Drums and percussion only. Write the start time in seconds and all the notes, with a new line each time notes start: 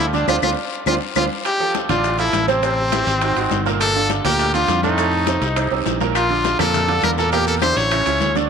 0.13 high bongo, high conga, short guiro, maracas
0.28 low bongo, high conga, high timbale, long guiro, claves, maracas
0.43 low bongo, high conga, high timbale, long guiro, claves, maracas
0.87 low bongo, high conga, high timbale, long guiro, claves, maracas
1.16 low bongo, high conga, high timbale, long guiro, claves, maracas
1.45 high bongo, high conga, high timbale, long guiro, maracas
1.60 high bongo, high conga
1.75 high bongo, high conga, high timbale, low timbale, short guiro, maracas
1.89 high bongo, high conga, low conga, high timbale, short guiro, maracas
2.04 high bongo, high conga, long guiro, maracas
2.18 high bongo, high conga, high timbale, maracas
2.33 high bongo, low bongo, high conga, high timbale, low timbale, short guiro, maracas
2.48 high conga, short guiro, maracas
2.63 high bongo, high conga, high timbale, long guiro, maracas
2.78 high bongo, high conga
2.92 high bongo, high conga, high timbale, low timbale, short guiro, maracas
3.07 high bongo, high timbale, short guiro, maracas
3.21 high bongo, high conga, high timbale, long guiro, maracas
3.36 high bongo, high conga, high timbale, maracas
3.51 high bongo, low bongo, high conga, low timbale, short guiro, maracas
3.66 high conga, short guiro, maracas
3.80 high bongo, high conga, high timbale, maracas
3.95 high bongo, high conga
4.10 high bongo, high conga, high timbale, low timbale, short guiro, maracas
4.25 high bongo, high conga, low conga, high timbale, short guiro, maracas
4.39 high bongo, long guiro, maracas
4.54 high bongo, high conga, high timbale, maracas
4.68 high bongo, low bongo, high conga, high timbale, low timbale, short guiro, maracas
4.83 high conga, short guiro, maracas
4.98 high bongo, high conga, high timbale, long guiro, maracas
5.13 high bongo, high conga
5.27 high bongo, high conga, high timbale, low timbale, short guiro, maracas
5.42 high bongo, high conga, high timbale, short guiro, maracas
5.56 high bongo, high conga, high timbale, long guiro, maracas
5.71 high bongo, high conga, high timbale
5.86 high bongo, low bongo, high conga, low timbale, short guiro, maracas
6.01 high conga, low timbale, short guiro, maracas
6.15 high bongo, high conga, high timbale, long guiro, claves, maracas
6.30 high bongo, high conga
6.45 high bongo, high conga, high timbale, low timbale, short guiro, maracas
6.59 high bongo, high conga, low conga, high timbale, short guiro, claves, maracas
6.74 high bongo, high conga, low conga, long guiro, maracas
6.88 high bongo, high timbale
7.03 high bongo, low bongo, high conga, high timbale, low timbale, short guiro, claves, maracas
7.18 high conga, short guiro, maracas
7.32 high bongo, high conga, high timbale, maracas
7.47 high bongo, maracas
7.62 high bongo, high conga, high timbale, low timbale, short guiro, claves, maracas
7.76 high bongo, high conga, high timbale, short guiro, maracas
7.91 high bongo, high conga, high timbale, long guiro, claves, maracas
8.06 high bongo, high conga, high timbale, maracas
8.20 high bongo, low bongo, high conga, low timbale, short guiro, maracas
8.35 high conga, short guiro, maracas